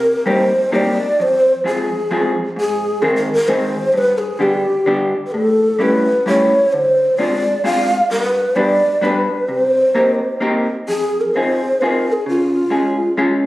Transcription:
0.00 0.15 C3 medium
0.00 0.29 A#4 loud
0.26 0.52 G3 medium
0.26 0.52 A#3 medium
0.26 0.52 C4 soft
0.26 0.52 D#4 medium
0.26 0.52 G4 medium
0.26 0.32 C#5 loud
0.32 0.77 C5 loud
0.72 0.98 G3 medium
0.72 0.98 A#3 medium
0.72 0.98 C4 medium
0.72 0.98 D#4 medium
0.72 0.98 G4 medium
0.72 1.23 D5 loud
1.20 1.54 F2 medium
1.20 1.66 C5 loud
1.64 1.89 F3 medium
1.64 1.89 G#3 medium
1.64 1.89 C4 medium
1.64 1.90 F4 medium
1.64 1.90 G#4 medium
1.64 2.32 G#4 medium
2.11 2.35 F3 medium
2.11 2.36 G#3 medium
2.11 2.36 C4 medium
2.11 2.36 F4 medium
2.11 2.36 G#4 medium
2.56 2.91 G#2 medium
2.60 3.04 G#4 loud
3.02 3.27 D#3 medium
3.02 3.27 G#3 medium
3.02 3.27 C4 medium
3.02 3.27 D#4 medium
3.02 3.27 G#4 medium
3.02 3.15 A#4 loud
3.16 3.32 A#4 medium
3.33 3.50 A#4 loud
3.48 3.73 D#3 medium
3.48 3.73 G#3 medium
3.48 3.73 C4 medium
3.48 3.73 D#4 medium
3.48 3.73 G#4 medium
3.48 3.93 C5 loud
3.93 4.29 G2 medium
3.93 3.99 C5 loud
3.98 4.19 B4 loud
4.18 4.38 G#4 loud
4.38 4.65 D3 medium
4.38 4.65 G3 medium
4.38 4.65 B3 medium
4.38 4.65 D4 medium
4.38 4.65 G4 medium
4.38 4.43 G#4 medium
4.42 5.11 G4 loud
4.86 5.12 D3 medium
4.86 5.12 G3 medium
4.86 5.12 B3 medium
4.86 5.13 D4 medium
4.86 5.13 G4 medium
5.27 5.34 B4 medium
5.32 5.70 A2 medium
5.32 5.83 A4 loud
5.79 6.05 G3 medium
5.79 6.06 A3 medium
5.79 6.06 C#4 medium
5.79 6.06 E4 medium
5.79 6.06 G4 medium
5.79 6.27 B4 loud
6.26 6.52 G3 medium
6.26 6.52 A3 medium
6.26 6.52 C#4 medium
6.26 6.52 E4 medium
6.26 6.52 G4 medium
6.26 6.74 C#5 loud
6.73 7.09 D3 medium
6.73 7.20 C5 loud
7.18 7.44 G#3 medium
7.18 7.44 C4 medium
7.18 7.44 D4 medium
7.18 7.45 F4 medium
7.18 7.45 G#4 medium
7.18 7.65 D5 loud
7.64 7.89 G#3 medium
7.64 7.90 C4 medium
7.64 7.90 D4 medium
7.64 7.90 F4 medium
7.64 7.90 G#4 medium
7.64 8.08 F5 loud
8.10 8.45 G2 medium
8.10 8.58 B4 loud
8.56 8.81 G3 medium
8.56 8.81 B3 medium
8.56 8.81 D4 medium
8.56 8.82 G4 medium
8.56 8.81 B4 medium
8.56 9.06 D5 loud
9.01 9.26 G3 medium
9.01 9.27 B3 medium
9.01 9.27 D4 medium
9.01 9.27 G4 medium
9.01 9.27 B4 medium
9.01 9.50 B4 medium
9.48 9.83 C3 medium
9.48 10.41 C5 medium
9.95 10.20 A#3 medium
9.95 10.20 C4 medium
9.95 10.20 D#4 medium
9.95 10.20 G4 medium
9.95 10.20 A#4 medium
10.40 10.66 A#3 medium
10.40 10.66 C4 medium
10.40 10.66 D#4 medium
10.40 10.67 G4 medium
10.40 10.67 A#4 medium
10.88 11.24 F2 medium
10.88 11.22 G#4 loud
11.21 11.36 A#4 medium
11.35 11.61 C4 medium
11.35 11.61 D#4 medium
11.35 11.61 F4 soft
11.35 11.61 G#4 medium
11.35 11.83 C5 loud
11.81 12.06 C4 medium
11.81 12.07 D#4 medium
11.81 12.07 F4 medium
11.81 12.07 G#4 medium
11.81 11.87 B4 medium
11.86 12.14 A#4 medium
12.12 12.27 G#4 medium
12.26 12.61 C#3 medium
12.26 13.39 F4 medium
12.70 12.96 G#3 medium
12.70 12.96 C#4 soft
12.70 12.96 F4 medium
12.70 12.96 G#4 medium
13.17 13.42 G#3 medium
13.17 13.42 C#4 medium
13.17 13.42 F4 medium
13.17 13.43 G#4 medium

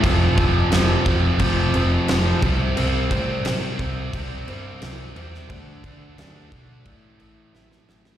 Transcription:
0.02 0.26 F1 medium
0.02 0.35 F2 medium
0.02 0.36 C3 loud
0.02 0.36 F3 loud
0.02 kick loud
0.02 crash medium
0.36 0.60 F1 medium
0.36 0.70 F2 medium
0.36 0.71 C3 loud
0.36 0.71 F3 medium
0.36 kick loud
0.36 crash medium
0.71 0.94 F1 medium
0.71 1.04 F2 loud
0.71 1.06 C3 loud
0.71 1.06 F3 loud
0.71 snare loud
0.71 crash medium
1.06 1.28 F1 medium
1.06 1.39 F2 medium
1.06 1.39 C3 medium
1.06 1.40 F3 loud
1.06 kick medium
1.06 crash medium
1.39 1.62 F1 medium
1.39 1.73 F2 medium
1.39 1.74 C3 loud
1.39 1.75 F3 loud
1.39 kick medium
1.39 crash medium
1.74 1.96 F1 medium
1.74 2.08 F2 loud
1.74 2.09 C3 medium
1.74 2.09 F3 medium
1.74 crash medium
2.08 2.31 F1 medium
2.08 2.41 F2 medium
2.08 2.41 C3 loud
2.08 2.42 F3 loud
2.08 snare loud
2.08 crash medium
2.42 2.64 C2 medium
2.42 2.76 C3 loud
2.42 2.76 G3 loud
2.42 2.77 C4 loud
2.42 kick loud
2.42 crash medium
2.77 2.99 C2 loud
2.77 3.10 C3 medium
2.77 3.11 G3 loud
2.77 3.11 C4 loud
2.77 crash medium
3.11 3.32 A2 loud
3.11 3.44 C3 medium
3.11 3.45 G3 medium
3.11 3.45 C4 medium
3.11 kick loud
3.11 crash medium
3.45 3.79 C3 loud
3.45 3.67 C3 medium
3.45 3.80 G3 loud
3.45 3.80 C4 loud
3.45 snare loud
3.45 crash loud
3.79 4.01 C2 medium
3.79 4.12 C3 medium
3.79 4.13 G3 loud
3.79 4.14 C4 medium
3.79 kick medium
3.79 crash medium
4.13 4.35 C2 medium
4.13 4.46 C3 loud
4.13 4.47 G3 loud
4.13 4.48 C4 medium
4.13 kick loud
4.13 crash medium
4.47 4.70 G2 medium
4.47 4.80 C3 medium
4.47 4.81 G3 loud
4.47 4.81 C4 medium
4.47 crash medium
4.81 5.03 C2 medium
4.81 5.15 C3 medium
4.81 5.15 G3 loud
4.81 5.16 C4 loud
4.81 snare loud
4.81 crash medium
5.16 5.38 E2 medium
5.16 5.48 C3 medium
5.16 5.48 G3 medium
5.16 5.48 C4 medium
5.16 crash medium
5.34 snare soft
5.49 5.72 D2 medium
5.49 5.82 D3 medium
5.49 5.83 A3 loud
5.49 5.84 D4 loud
5.49 kick loud
5.49 crash medium
5.83 6.06 D2 medium
5.83 6.16 D3 medium
5.83 6.17 A3 medium
5.83 6.17 D4 medium
5.83 kick medium
5.83 crash medium
6.17 6.40 D2 medium
6.17 6.50 D3 loud
6.17 6.50 A3 medium
6.17 6.51 D4 loud
6.17 snare loud
6.17 crash medium
6.51 6.86 B1 medium
6.51 6.83 D3 medium
6.51 6.84 A3 medium
6.51 6.84 D4 medium
6.51 kick loud
6.51 crash medium
6.85 7.08 A1 loud
6.85 7.18 A2 medium
6.85 7.19 E3 loud
6.85 7.19 A3 loud
6.85 kick loud
6.85 crash medium
7.19 7.42 A1 medium
7.19 7.52 A2 medium
7.19 7.53 E3 loud
7.19 7.54 A3 medium
7.19 crash medium
7.54 7.77 A1 medium
7.54 7.87 A2 medium
7.54 7.88 E3 loud
7.54 7.88 A3 loud
7.54 snare medium
7.71 snare medium
7.88 8.11 A1 loud
7.88 8.17 A2 medium
7.88 8.17 E3 medium
7.88 8.17 A3 medium
7.88 snare medium
8.05 snare loud

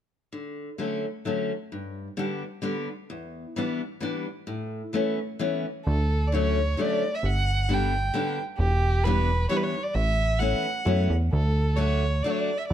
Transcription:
0.32 0.69 D3 soft
0.78 1.04 D3 soft
0.78 1.05 F#3 soft
0.78 1.05 A3 soft
0.78 1.05 C#4 soft
1.25 1.51 D3 soft
1.25 1.51 F#3 soft
1.25 1.51 A3 soft
1.25 1.52 C#4 medium
1.72 2.07 G2 soft
2.17 2.42 D3 medium
2.17 2.42 G3 soft
2.17 2.43 B3 soft
2.17 2.43 D4 medium
2.62 2.87 D3 medium
2.62 2.88 G3 soft
2.62 2.88 B3 soft
2.62 2.88 D4 medium
3.10 3.44 E2 medium
3.56 3.80 E3 medium
3.56 3.80 G3 medium
3.56 3.81 B3 medium
3.56 3.81 D4 medium
4.00 4.25 E3 soft
4.00 4.25 G3 soft
4.00 4.26 B3 soft
4.00 4.26 D4 medium
4.47 4.81 A2 medium
4.93 5.17 E3 medium
4.93 5.18 A3 medium
4.93 5.18 B3 soft
4.93 5.19 C#4 medium
5.39 5.65 E3 medium
5.39 5.65 A3 soft
5.39 5.65 B3 medium
5.39 5.65 C#4 medium
5.85 6.76 D2 medium
5.85 6.29 A4 medium
6.27 6.34 D5 soft
6.32 6.57 D3 soft
6.32 6.58 F#3 soft
6.32 6.58 A3 soft
6.32 6.58 C#4 medium
6.32 6.83 C#5 medium
6.77 7.02 D3 medium
6.77 7.02 F#3 soft
6.77 7.03 A3 soft
6.77 7.03 C#4 medium
6.77 7.16 D5 medium
7.14 7.27 E5 medium
7.23 8.11 G1 medium
7.23 7.74 F#5 medium
7.69 7.93 D3 medium
7.69 7.93 G3 soft
7.69 7.93 B3 soft
7.69 7.94 D4 medium
7.73 8.40 G5 medium
8.14 8.38 D3 medium
8.14 8.38 G3 soft
8.14 8.38 B3 soft
8.14 8.38 D4 medium
8.58 9.47 E1 loud
8.58 9.05 G4 medium
9.04 9.29 E3 medium
9.04 9.29 G3 medium
9.04 9.29 B3 soft
9.04 9.30 D4 medium
9.04 9.49 B4 medium
9.49 9.74 E3 medium
9.49 9.74 G3 soft
9.49 9.74 B3 soft
9.49 9.75 D4 medium
9.49 9.58 C#5 medium
9.57 9.65 B4 medium
9.63 9.85 C#5 medium
9.84 9.96 D5 medium
9.94 10.55 A1 medium
9.94 10.40 E5 medium
10.39 10.64 E3 medium
10.39 10.65 A3 soft
10.39 10.65 B3 medium
10.39 10.66 C#4 medium
10.39 11.10 F#5 medium
10.85 11.08 F#2 medium
10.85 11.10 E3 medium
10.85 11.11 A3 soft
10.85 11.11 B3 soft
10.85 11.11 C#4 medium
11.10 11.30 E2 medium
11.32 12.23 D2 medium
11.32 11.78 A4 medium
11.76 12.02 F#3 medium
11.76 12.03 A3 soft
11.76 12.03 D4 soft
11.76 12.03 F#4 medium
11.76 12.24 C#5 medium
12.23 12.49 F#3 medium
12.23 12.49 A3 soft
12.23 12.50 D4 medium
12.23 12.50 F#4 medium
12.23 12.32 D5 medium
12.30 12.40 C#5 medium
12.38 12.59 D5 medium
12.58 12.67 E5 medium
12.67 12.73 D5 medium

